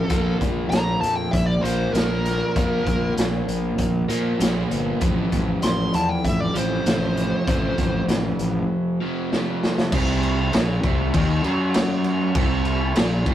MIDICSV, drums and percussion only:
0, 0, Header, 1, 2, 480
1, 0, Start_track
1, 0, Tempo, 612245
1, 82, Time_signature, 4, 2, 24, 8
1, 10461, End_track
2, 0, Start_track
2, 0, Title_t, "Drums"
2, 76, Note_on_c, 9, 42, 81
2, 80, Note_on_c, 9, 36, 96
2, 154, Note_off_c, 9, 42, 0
2, 158, Note_off_c, 9, 36, 0
2, 322, Note_on_c, 9, 36, 76
2, 324, Note_on_c, 9, 42, 56
2, 400, Note_off_c, 9, 36, 0
2, 403, Note_off_c, 9, 42, 0
2, 562, Note_on_c, 9, 42, 75
2, 576, Note_on_c, 9, 38, 105
2, 641, Note_off_c, 9, 42, 0
2, 654, Note_off_c, 9, 38, 0
2, 810, Note_on_c, 9, 42, 55
2, 889, Note_off_c, 9, 42, 0
2, 1044, Note_on_c, 9, 36, 83
2, 1045, Note_on_c, 9, 42, 75
2, 1123, Note_off_c, 9, 36, 0
2, 1124, Note_off_c, 9, 42, 0
2, 1293, Note_on_c, 9, 42, 55
2, 1371, Note_off_c, 9, 42, 0
2, 1526, Note_on_c, 9, 42, 82
2, 1539, Note_on_c, 9, 38, 105
2, 1604, Note_off_c, 9, 42, 0
2, 1617, Note_off_c, 9, 38, 0
2, 1768, Note_on_c, 9, 42, 56
2, 1782, Note_on_c, 9, 38, 31
2, 1847, Note_off_c, 9, 42, 0
2, 1860, Note_off_c, 9, 38, 0
2, 2007, Note_on_c, 9, 36, 106
2, 2007, Note_on_c, 9, 42, 74
2, 2085, Note_off_c, 9, 42, 0
2, 2086, Note_off_c, 9, 36, 0
2, 2248, Note_on_c, 9, 36, 79
2, 2249, Note_on_c, 9, 42, 54
2, 2326, Note_off_c, 9, 36, 0
2, 2327, Note_off_c, 9, 42, 0
2, 2489, Note_on_c, 9, 42, 87
2, 2502, Note_on_c, 9, 38, 102
2, 2567, Note_off_c, 9, 42, 0
2, 2580, Note_off_c, 9, 38, 0
2, 2732, Note_on_c, 9, 42, 58
2, 2811, Note_off_c, 9, 42, 0
2, 2966, Note_on_c, 9, 42, 78
2, 2969, Note_on_c, 9, 36, 78
2, 3044, Note_off_c, 9, 42, 0
2, 3047, Note_off_c, 9, 36, 0
2, 3211, Note_on_c, 9, 42, 53
2, 3289, Note_off_c, 9, 42, 0
2, 3453, Note_on_c, 9, 42, 92
2, 3466, Note_on_c, 9, 38, 112
2, 3531, Note_off_c, 9, 42, 0
2, 3545, Note_off_c, 9, 38, 0
2, 3695, Note_on_c, 9, 42, 57
2, 3773, Note_off_c, 9, 42, 0
2, 3927, Note_on_c, 9, 42, 85
2, 3932, Note_on_c, 9, 36, 100
2, 4006, Note_off_c, 9, 42, 0
2, 4011, Note_off_c, 9, 36, 0
2, 4173, Note_on_c, 9, 42, 54
2, 4174, Note_on_c, 9, 36, 74
2, 4251, Note_off_c, 9, 42, 0
2, 4252, Note_off_c, 9, 36, 0
2, 4409, Note_on_c, 9, 42, 78
2, 4422, Note_on_c, 9, 38, 97
2, 4487, Note_off_c, 9, 42, 0
2, 4500, Note_off_c, 9, 38, 0
2, 4655, Note_on_c, 9, 42, 60
2, 4733, Note_off_c, 9, 42, 0
2, 4897, Note_on_c, 9, 36, 73
2, 4897, Note_on_c, 9, 42, 68
2, 4975, Note_off_c, 9, 36, 0
2, 4976, Note_off_c, 9, 42, 0
2, 5138, Note_on_c, 9, 42, 54
2, 5216, Note_off_c, 9, 42, 0
2, 5379, Note_on_c, 9, 42, 81
2, 5392, Note_on_c, 9, 38, 106
2, 5457, Note_off_c, 9, 42, 0
2, 5471, Note_off_c, 9, 38, 0
2, 5623, Note_on_c, 9, 42, 52
2, 5701, Note_off_c, 9, 42, 0
2, 5860, Note_on_c, 9, 42, 76
2, 5861, Note_on_c, 9, 36, 104
2, 5938, Note_off_c, 9, 42, 0
2, 5939, Note_off_c, 9, 36, 0
2, 6100, Note_on_c, 9, 42, 52
2, 6101, Note_on_c, 9, 36, 80
2, 6178, Note_off_c, 9, 42, 0
2, 6180, Note_off_c, 9, 36, 0
2, 6339, Note_on_c, 9, 42, 79
2, 6353, Note_on_c, 9, 38, 99
2, 6418, Note_off_c, 9, 42, 0
2, 6431, Note_off_c, 9, 38, 0
2, 6579, Note_on_c, 9, 42, 57
2, 6658, Note_off_c, 9, 42, 0
2, 7311, Note_on_c, 9, 38, 63
2, 7389, Note_off_c, 9, 38, 0
2, 7554, Note_on_c, 9, 38, 80
2, 7633, Note_off_c, 9, 38, 0
2, 7670, Note_on_c, 9, 38, 90
2, 7749, Note_off_c, 9, 38, 0
2, 7778, Note_on_c, 9, 49, 126
2, 7778, Note_on_c, 9, 57, 85
2, 7780, Note_on_c, 9, 36, 109
2, 7857, Note_off_c, 9, 49, 0
2, 7857, Note_off_c, 9, 57, 0
2, 7858, Note_off_c, 9, 36, 0
2, 8020, Note_on_c, 9, 57, 57
2, 8098, Note_off_c, 9, 57, 0
2, 8255, Note_on_c, 9, 57, 76
2, 8268, Note_on_c, 9, 38, 114
2, 8333, Note_off_c, 9, 57, 0
2, 8347, Note_off_c, 9, 38, 0
2, 8494, Note_on_c, 9, 57, 61
2, 8495, Note_on_c, 9, 36, 100
2, 8572, Note_off_c, 9, 57, 0
2, 8573, Note_off_c, 9, 36, 0
2, 8733, Note_on_c, 9, 36, 96
2, 8734, Note_on_c, 9, 57, 83
2, 8811, Note_off_c, 9, 36, 0
2, 8812, Note_off_c, 9, 57, 0
2, 8970, Note_on_c, 9, 57, 60
2, 9048, Note_off_c, 9, 57, 0
2, 9204, Note_on_c, 9, 57, 83
2, 9218, Note_on_c, 9, 38, 118
2, 9283, Note_off_c, 9, 57, 0
2, 9296, Note_off_c, 9, 38, 0
2, 9440, Note_on_c, 9, 57, 59
2, 9519, Note_off_c, 9, 57, 0
2, 9681, Note_on_c, 9, 57, 84
2, 9683, Note_on_c, 9, 36, 115
2, 9759, Note_off_c, 9, 57, 0
2, 9762, Note_off_c, 9, 36, 0
2, 9917, Note_on_c, 9, 57, 54
2, 9996, Note_off_c, 9, 57, 0
2, 10156, Note_on_c, 9, 57, 82
2, 10169, Note_on_c, 9, 38, 124
2, 10234, Note_off_c, 9, 57, 0
2, 10248, Note_off_c, 9, 38, 0
2, 10398, Note_on_c, 9, 36, 103
2, 10400, Note_on_c, 9, 57, 61
2, 10461, Note_off_c, 9, 36, 0
2, 10461, Note_off_c, 9, 57, 0
2, 10461, End_track
0, 0, End_of_file